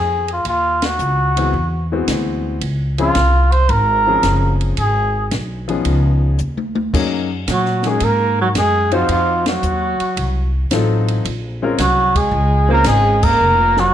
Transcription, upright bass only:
0, 0, Header, 1, 3, 480
1, 0, Start_track
1, 0, Key_signature, -5, "minor"
1, 0, Tempo, 539084
1, 410, Time_signature, 4, 2, 24, 8
1, 12411, End_track
2, 0, Start_track
2, 0, Title_t, "Upright bass"
2, 0, Program_c, 0, 32
2, 0, Note_on_c, 0, 41, 97
2, 390, Note_off_c, 0, 41, 0
2, 400, Note_on_c, 0, 39, 88
2, 871, Note_off_c, 0, 39, 0
2, 884, Note_on_c, 0, 37, 82
2, 1353, Note_off_c, 0, 37, 0
2, 1366, Note_on_c, 0, 40, 93
2, 1834, Note_off_c, 0, 40, 0
2, 1849, Note_on_c, 0, 38, 91
2, 2316, Note_off_c, 0, 38, 0
2, 2330, Note_on_c, 0, 37, 84
2, 2797, Note_off_c, 0, 37, 0
2, 2812, Note_on_c, 0, 36, 98
2, 3278, Note_off_c, 0, 36, 0
2, 3285, Note_on_c, 0, 32, 99
2, 3754, Note_off_c, 0, 32, 0
2, 3771, Note_on_c, 0, 30, 89
2, 4237, Note_off_c, 0, 30, 0
2, 4256, Note_on_c, 0, 32, 89
2, 4720, Note_off_c, 0, 32, 0
2, 4730, Note_on_c, 0, 35, 92
2, 5197, Note_off_c, 0, 35, 0
2, 5210, Note_on_c, 0, 37, 98
2, 5677, Note_off_c, 0, 37, 0
2, 5697, Note_on_c, 0, 39, 91
2, 6160, Note_off_c, 0, 39, 0
2, 6178, Note_on_c, 0, 42, 88
2, 6641, Note_off_c, 0, 42, 0
2, 6657, Note_on_c, 0, 46, 96
2, 7120, Note_off_c, 0, 46, 0
2, 7131, Note_on_c, 0, 44, 97
2, 7597, Note_off_c, 0, 44, 0
2, 7614, Note_on_c, 0, 42, 93
2, 8078, Note_off_c, 0, 42, 0
2, 8090, Note_on_c, 0, 41, 80
2, 8556, Note_off_c, 0, 41, 0
2, 8573, Note_on_c, 0, 39, 97
2, 8880, Note_off_c, 0, 39, 0
2, 9053, Note_on_c, 0, 36, 97
2, 9518, Note_off_c, 0, 36, 0
2, 9533, Note_on_c, 0, 33, 98
2, 9997, Note_off_c, 0, 33, 0
2, 10015, Note_on_c, 0, 34, 91
2, 10478, Note_off_c, 0, 34, 0
2, 10493, Note_on_c, 0, 36, 91
2, 10957, Note_off_c, 0, 36, 0
2, 10965, Note_on_c, 0, 37, 100
2, 11433, Note_off_c, 0, 37, 0
2, 11448, Note_on_c, 0, 32, 100
2, 11915, Note_off_c, 0, 32, 0
2, 11938, Note_on_c, 0, 29, 89
2, 12400, Note_off_c, 0, 29, 0
2, 12411, End_track
3, 0, Start_track
3, 0, Title_t, "Muted upright bass strokes"
3, 8903, Note_on_c, 9, 29, 45
3, 8992, Note_off_c, 9, 29, 0
3, 12411, End_track
0, 0, End_of_file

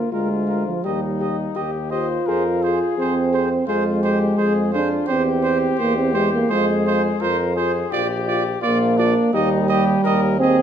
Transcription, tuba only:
0, 0, Header, 1, 2, 480
1, 0, Start_track
1, 0, Key_signature, -3, "major"
1, 0, Tempo, 708383
1, 1540, Time_signature, 4, 2, 24, 8
1, 7197, End_track
2, 0, Start_track
2, 0, Title_t, "Tuba"
2, 0, Program_c, 0, 58
2, 88, Note_on_c, 0, 38, 63
2, 519, Note_off_c, 0, 38, 0
2, 576, Note_on_c, 0, 39, 68
2, 1003, Note_off_c, 0, 39, 0
2, 1061, Note_on_c, 0, 39, 61
2, 1484, Note_off_c, 0, 39, 0
2, 1541, Note_on_c, 0, 41, 68
2, 1904, Note_off_c, 0, 41, 0
2, 2019, Note_on_c, 0, 41, 68
2, 2442, Note_off_c, 0, 41, 0
2, 2499, Note_on_c, 0, 41, 69
2, 2921, Note_off_c, 0, 41, 0
2, 2972, Note_on_c, 0, 41, 72
2, 3393, Note_off_c, 0, 41, 0
2, 3448, Note_on_c, 0, 40, 72
2, 3869, Note_off_c, 0, 40, 0
2, 3927, Note_on_c, 0, 40, 77
2, 4353, Note_off_c, 0, 40, 0
2, 4408, Note_on_c, 0, 41, 76
2, 4835, Note_off_c, 0, 41, 0
2, 4891, Note_on_c, 0, 41, 78
2, 5315, Note_off_c, 0, 41, 0
2, 5371, Note_on_c, 0, 34, 80
2, 5793, Note_off_c, 0, 34, 0
2, 5852, Note_on_c, 0, 34, 82
2, 6214, Note_off_c, 0, 34, 0
2, 6329, Note_on_c, 0, 39, 91
2, 6752, Note_off_c, 0, 39, 0
2, 6813, Note_on_c, 0, 39, 88
2, 7197, Note_off_c, 0, 39, 0
2, 7197, End_track
0, 0, End_of_file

